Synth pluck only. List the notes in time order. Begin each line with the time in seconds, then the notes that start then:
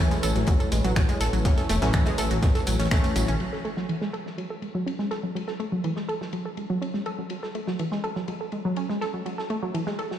0.11 G#3
0.23 A4
0.36 F#3
0.48 F#3
0.60 A4
0.72 G#3
0.84 F#3
0.96 C#4
1.09 G#3
1.21 A4
1.33 F#3
1.45 F#3
1.58 A4
1.69 A3
1.82 F#3
1.94 E3
2.06 G#3
2.18 A4
2.31 F#3
2.43 F#3
2.55 A4
2.67 F#3
2.80 C#4
2.91 A3
3.04 A3
3.16 F#3
3.28 C#4
3.40 F#3
3.53 A4
3.65 A3
3.77 F#3
3.89 E3
4.02 G#3
4.13 A4
4.26 F#3
4.38 F#3
4.50 A4
4.62 G#3
4.75 F#3
4.86 C#4
4.99 G#3
5.11 A4
5.23 F#3
5.35 F#3
5.48 A4
5.60 A3
5.72 F#3
5.84 E3
5.97 G#3
6.09 A4
6.21 F#3
6.33 F#3
6.46 A4
6.57 G#3
6.70 F#3
6.82 C#4
6.94 G#3
7.06 A4
7.19 F#3
7.31 F#3
7.43 A4
7.55 A3
7.68 F#3
7.79 E3
7.92 G#3
8.04 A4
8.16 F#3
8.28 F#3
8.41 A4
8.53 G#3
8.65 F#3
8.77 C#4
8.90 G#3
9.01 A4
9.14 F#3
9.26 F#3
9.38 A4
9.50 A3
9.63 F#3
9.74 E3
9.87 G#3
9.99 A4
10.11 F#3